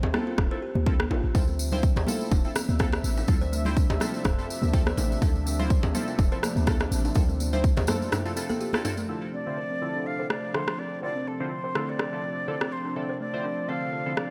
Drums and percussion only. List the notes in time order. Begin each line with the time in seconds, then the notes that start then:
0.03 high bongo
0.14 cross-stick, high conga, low conga
0.38 kick, cross-stick, low bongo
0.75 high conga
0.86 kick
1.00 cross-stick, high conga
1.11 low bongo
1.35 kick, tambourine, low conga
1.47 tambourine
1.59 tambourine
1.72 tambourine, low conga
1.83 kick, tambourine
1.96 tambourine, high bongo
2.07 tambourine, high conga, low conga
2.21 tambourine
2.31 kick, tambourine, low bongo
2.44 tambourine
2.55 cross-stick, tambourine, high conga
2.69 tambourine, high conga
2.79 kick, cross-stick, tambourine, high conga
2.92 cross-stick, tambourine, high bongo
3.04 tambourine
3.17 tambourine, low bongo
3.28 kick, tambourine, low conga
3.42 tambourine
3.53 tambourine
3.65 tambourine, low conga
3.77 kick, tambourine
3.90 tambourine, high bongo
4.00 cross-stick, tambourine, high conga, low conga
4.14 tambourine
4.24 kick, cross-stick, mid tom, tambourine, low bongo
4.39 tambourine
4.50 tambourine
4.62 tambourine, high conga
4.74 kick, tambourine
4.86 cross-stick, tambourine, high conga
4.97 tambourine, low bongo
5.12 tambourine
5.22 kick, tambourine, low conga
5.35 tambourine
5.47 tambourine
5.59 tambourine, low conga
5.70 kick, tambourine
5.83 tambourine, high bongo
5.95 tambourine, high conga, low conga
6.08 tambourine
6.19 kick, tambourine, low bongo
6.32 tambourine
6.43 cross-stick, tambourine, high conga
6.56 tambourine, high conga
6.67 kick, cross-stick, tambourine, high conga
6.80 cross-stick, tambourine, high bongo
6.92 tambourine
7.05 tambourine, low bongo
7.15 kick, tambourine, low conga
7.29 tambourine
7.40 tambourine, high conga
7.53 tambourine, low conga
7.64 kick, tambourine
7.77 tambourine, high bongo
7.87 cross-stick, mid tom, tambourine, high conga, low conga
8.02 tambourine
8.12 cross-stick, mid tom, tambourine, low bongo
8.25 tambourine
8.37 tambourine
8.50 tambourine, high conga
8.61 tambourine
8.73 cross-stick, tambourine, high conga
8.85 mid tom, tambourine, low bongo
8.97 tambourine
10.30 cross-stick
10.54 cross-stick
10.68 cross-stick
11.75 cross-stick
11.99 cross-stick
12.61 cross-stick
14.17 cross-stick